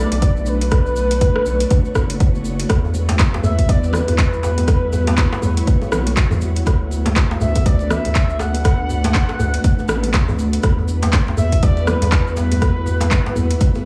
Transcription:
Already playing: A3 B3 D4 F#4 B4 D5
0.12 B1, closed hi-hat, shaker
0.22 kick, closed hi-hat, shaker
0.37 shaker
0.41 D5
0.46 B4, shaker
0.61 closed hi-hat, shaker
0.71 C#5, kick, cross-stick, closed hi-hat, shaker
0.86 shaker
0.96 shaker
1.11 closed hi-hat, shaker
1.21 kick, closed hi-hat, shaker
1.36 cross-stick
1.46 B1, shaker
1.60 closed hi-hat, shaker
1.70 kick, closed hi-hat, shaker
1.85 shaker
1.95 F#1, kick, cross-stick, shaker
2.10 closed hi-hat, shaker
2.20 kick, closed hi-hat, shaker
2.35 shaker
2.45 shaker
2.59 closed hi-hat, shaker
2.69 E2 G3 E4 B4, kick, cross-stick, closed hi-hat, muted conga, shaker
2.85 djembe tone
2.94 muted conga, shaker
3.09 closed hi-hat, djembe slap, high conga, shaker
3.19 kick, clap, closed hi-hat, muted conga, djembe tone, shaker
3.34 djembe slap, high conga
3.43 E2 E5, high conga, djembe bass, shaker
3.59 kick, closed hi-hat, muted conga, shaker
3.68 E2 D5, kick, closed hi-hat, djembe tone, shaker
3.84 muted conga, shaker
3.93 B4, cross-stick, high conga, low conga, shaker
4.08 E2, closed hi-hat, muted conga, djembe tone, shaker
4.18 kick, clap, closed hi-hat, shaker
4.33 shaker
4.43 B4, djembe slap, muted conga, shaker
4.58 closed hi-hat, high conga, djembe tone, shaker
4.67 C#5, kick, cross-stick, closed hi-hat, muted conga, shaker
4.93 muted conga, djembe tone, shaker
5.07 closed hi-hat, djembe slap, high conga, shaker
5.17 kick, clap, closed hi-hat, muted conga, shaker
5.32 djembe slap, high conga
5.42 E2, djembe tone, high conga, djembe bass, shaker
5.57 closed hi-hat, muted conga, shaker
5.67 kick, closed hi-hat, high conga, shaker
5.82 muted conga, djembe tone, shaker
5.92 B1, cross-stick, low conga, shaker
6.07 closed hi-hat, muted conga, high conga, shaker
6.17 E2, kick, clap, closed hi-hat, shaker
6.31 djembe tone, djembe bass, low conga, shaker
6.41 muted conga, shaker
6.56 closed hi-hat, shaker
6.66 D2 A3 D4 B4, kick, cross-stick, closed hi-hat, muted conga, djembe tone, shaker
6.91 muted conga, shaker
7.06 closed hi-hat, djembe slap, high conga, shaker
7.16 kick, clap, closed hi-hat, muted conga, djembe tone, shaker
7.31 djembe slap, high conga
7.40 D2 E5, high conga, djembe bass, shaker
7.55 kick, closed hi-hat, muted conga, djembe tone, shaker
7.66 D2 D5, kick, closed hi-hat, shaker
7.79 muted conga, shaker
7.90 E5, cross-stick, high conga, low conga, shaker
8.05 D2, closed hi-hat, muted conga, djembe tone, shaker
8.15 kick, clap, closed hi-hat, shaker
8.30 shaker
8.39 F#5, djembe slap, muted conga, djembe tone, shaker
8.54 closed hi-hat, high conga, shaker
8.64 kick, cross-stick, closed hi-hat, muted conga, shaker
8.89 muted conga, djembe tone, shaker
9.04 closed hi-hat, djembe slap, high conga, shaker
9.14 kick, clap, closed hi-hat, muted conga, shaker
9.28 djembe slap, high conga, djembe tone
9.39 D2, high conga, djembe bass, shaker
9.54 closed hi-hat, muted conga, shaker
9.64 kick, closed hi-hat, high conga, shaker
9.79 muted conga, djembe tone, shaker
9.88 A1, cross-stick, low conga, shaker
10.03 closed hi-hat, muted conga, high conga, shaker
10.13 D2, kick, clap, closed hi-hat, djembe tone, shaker
10.28 low conga, djembe bass, shaker
10.39 muted conga, shaker
10.53 closed hi-hat, shaker
10.62 E2 G3 B3 E4 F#4, kick, cross-stick, closed hi-hat, muted conga, shaker
10.79 djembe tone
10.88 muted conga, shaker
11.02 closed hi-hat, djembe slap, high conga, shaker
11.12 kick, clap, closed hi-hat, muted conga, djembe tone, shaker
11.27 djembe slap, high conga
11.37 E2 E5, high conga, djembe bass, shaker
11.52 kick, closed hi-hat, muted conga, shaker
11.62 E2 D5, kick, closed hi-hat, djembe tone, shaker
11.77 muted conga, shaker
11.87 B4, cross-stick, high conga, low conga, shaker
12.02 E2, closed hi-hat, muted conga, djembe tone, shaker
12.12 kick, clap, closed hi-hat, shaker
12.27 shaker
12.36 B4, muted conga, djembe slap, shaker
12.51 closed hi-hat, high conga, djembe tone, shaker
12.61 kick, cross-stick, closed hi-hat, muted conga, shaker
12.86 muted conga, djembe tone, shaker
13.01 closed hi-hat, djembe slap, high conga, shaker
13.11 kick, clap, closed hi-hat, muted conga, shaker
13.26 djembe slap, high conga
13.36 E2, high conga, djembe tone, djembe bass, shaker
13.50 closed hi-hat, muted conga, shaker
13.60 kick, closed hi-hat, high conga, shaker
13.75 muted conga, djembe tone, shaker

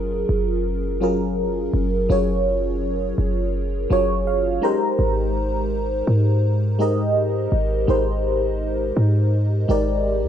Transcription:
Already playing: F#1 F#3 C#4 F4 G#4 A#4
0.29 F#1
1.00 F#3 C#4 F4 G#4 A#4
1.74 F#1
2.09 F#1 F#3 C#4 F4 G#4 C#5
3.18 F#1
3.90 F#1 F#3 C#4 F4 G#4 C#5
4.27 F5
4.62 G#3 D#4 G4 A#4 C5 A#5
4.99 G#1
6.07 G#2
6.79 G#3 D#4 G4 A#4 D#5
7.52 G#1
7.87 G#1 G#3 D#4 G4 A#4 C5
8.97 G#2
9.68 G#1 G#3 D#4 G4 A#4 D5
10.23 D#2

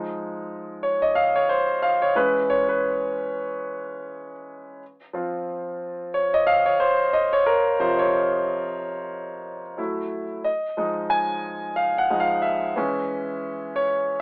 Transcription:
Already playing: F3 G#3 D#4
0.83 C#5
1.02 D#5
1.15 F5
1.36 C#5
1.49 C5
1.82 F5
2.02 C#5
2.15 E3 G#3 C#4 B4
2.50 C#5
2.69 B4
5.13 F3 C4 F4
6.14 C#5
6.34 D#5
6.47 F5
6.66 C#5
6.80 C5
7.13 D#5
7.33 C#5
7.46 A#4
7.79 C3 F3 F4 C5
7.99 C#5
9.78 F#3 A3 E4
10.44 D#5
10.77 F3 G#3 D#4
11.10 G#5
11.76 F5
11.98 F#5
12.10 F3 G#3 D#4
12.20 F5
12.42 E5
12.76 E3 G#3 C#4
13.76 C#5

